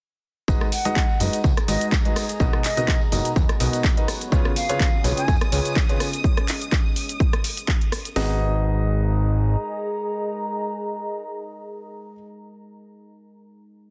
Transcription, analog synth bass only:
0.48 0.57 G#1 loud
1.20 1.29 F#1 medium
1.44 1.53 C#2 medium
1.68 1.77 G#1 medium
2.40 2.49 B1 loud
3.12 3.21 F#1 medium
3.36 3.45 D#2 medium
3.60 3.69 B1 medium
4.32 4.41 C#2 loud
5.04 5.13 B1 medium
5.28 5.37 F2 medium
5.52 5.61 C#2 medium
8.16 9.56 G#1 medium

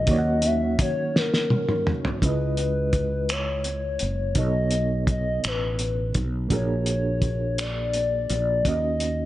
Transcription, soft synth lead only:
0.00 0.48 D#5 medium
0.46 0.80 E5 loud
0.82 1.19 C#5 loud
1.18 1.87 A#4 loud
2.25 3.33 B4 medium
3.31 4.37 C#5 medium
4.38 5.04 D#5 medium
5.11 5.49 D#5 medium
5.47 6.16 B4 medium
6.54 7.62 C#5 medium
7.60 8.68 D5 medium
8.66 9.26 D#5 loud

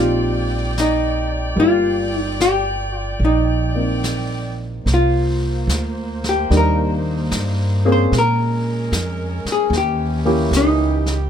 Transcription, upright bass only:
0.00 1.52 A#1 medium
1.57 3.16 G1 medium
3.20 4.81 A#1 medium
4.86 5.66 C2 medium
5.67 6.47 D2 medium
6.51 7.29 D#2 medium
7.31 8.09 G2 medium
8.12 8.89 A#2 medium
8.92 9.41 F2 medium
9.45 muted upright bass stroke soft
9.70 10.49 D#2 medium
10.51 11.29 C#2 medium

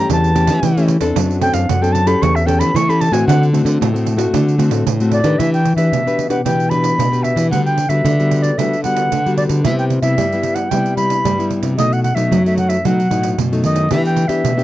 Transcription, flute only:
0.00 0.11 A#5 medium
0.12 0.87 A5 medium
1.42 1.55 G5 loud
1.54 1.71 F5 medium
1.69 1.83 F#5 medium
1.82 1.94 G5 medium
1.92 2.08 A5 medium
2.07 2.23 B5 medium
2.22 2.37 C#6 loud
2.35 2.48 E5 medium
2.46 2.61 G5 medium
2.59 2.77 B5 loud
2.76 2.91 C#6 loud
2.89 3.02 B5 medium
3.01 3.14 A5 medium
3.13 3.27 G#5 medium
3.27 3.43 F#5 loud
5.12 5.40 D5 medium
5.38 5.52 E5 medium
5.53 5.75 G5 medium
5.76 6.27 E5 medium
6.30 6.44 F#5 medium
6.44 6.71 G5 medium
6.70 7.24 B5 medium
7.23 7.50 E5 medium
7.50 7.64 F#5 medium
7.65 7.90 G5 medium
7.89 8.44 E5 medium
8.42 8.59 D5 medium
8.58 8.83 E5 medium
8.83 9.34 F#5 medium
9.37 9.43 D5 medium
9.64 9.77 E5 medium
9.78 9.84 G5 medium
10.02 10.56 E5 medium
10.55 10.71 F#5 medium
10.70 10.96 G5 medium
10.97 11.47 B5 medium
11.78 11.94 D#5 medium
11.93 12.03 F#5 medium
12.03 12.16 F#5 medium
12.15 12.43 E5 medium
12.47 12.57 E5 medium
12.58 12.70 F#5 medium
12.69 12.87 E5 medium
12.85 13.38 F#5 medium
13.64 13.93 D#5 medium
13.92 14.04 E5 medium
14.06 14.29 G5 medium
14.28 14.64 E5 medium

